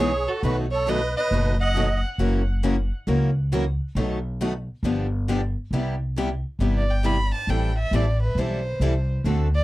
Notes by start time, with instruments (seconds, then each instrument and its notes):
Already playing: upright bass B1, accordion G#4, violin C#5
0.00 steel-string acoustic guitar E3 G#3 B3 D#4 G#4
0.28 accordion F#4, violin A4
0.43 upright bass B1, steel-string acoustic guitar B2 D#3 F#3 A3 B3 D#4 F#4 A4, accordion F#4, violin B4
0.72 accordion A4, violin C#5
0.86 steel-string acoustic guitar B2 D#3 F#3 A3 B3 D#4 F#4 A4, accordion B4, violin D#5
1.17 accordion B4, violin D#5
1.31 upright bass F#1, steel-string acoustic guitar B2 D#3 F#3 A3 B3 D#4 F#4 A4
1.60 accordion D#5, violin F#5
1.75 steel-string acoustic guitar B2 D#3 F#3 A3 B3 D#4 F#4 A4
2.18 upright bass F#1, steel-string acoustic guitar C#3 E3 F#3 A#3 C#4 E4 F#4 A#4
2.63 steel-string acoustic guitar C#3 E3 F#3 A#3 C#4 E4 F#4 A#4
3.07 upright bass C#2, steel-string acoustic guitar C#3 E3 F#3 A#3 C#4 E4 F#4 A#4
3.52 steel-string acoustic guitar C#3 E3 F#3 A#3 C#4 E4 F#4 A#4
3.95 upright bass B1, steel-string acoustic guitar B2 D#3 F#3 A3 B3 D#4 F#4 A4
4.41 steel-string acoustic guitar B2 D#3 F#3 A3 B3 D#4 F#4 A4
4.83 upright bass G1, steel-string acoustic guitar D3 F3 B3 D4 G4
5.29 steel-string acoustic guitar D3 F3 B3 D4 G4
5.71 upright bass C2, steel-string acoustic guitar C3 G3 B3 E4 G4
6.16 steel-string acoustic guitar C3 G3 B3 E4 G4
6.59 upright bass G1, steel-string acoustic guitar C3 G3 B3 E4 G4
6.77 violin D5
6.91 violin G5
7.04 steel-string acoustic guitar C3 G3 B3 E4 G4, violin B5
7.35 violin A5
7.47 upright bass A1, steel-string acoustic guitar E3 G3 C4 E4 A4, violin G5
7.79 violin E5
7.91 upright bass A1, steel-string acoustic guitar E3 G3 C4 E4 A4
7.95 violin D5
8.23 violin B4
8.35 upright bass B1, steel-string acoustic guitar E3 G3 C4 E4 A4, violin C5
8.80 upright bass C2, steel-string acoustic guitar E3 G3 C4 E4 A4
9.24 upright bass D2, steel-string acoustic guitar D3 A3 C4 F#4 A4
9.55 violin D5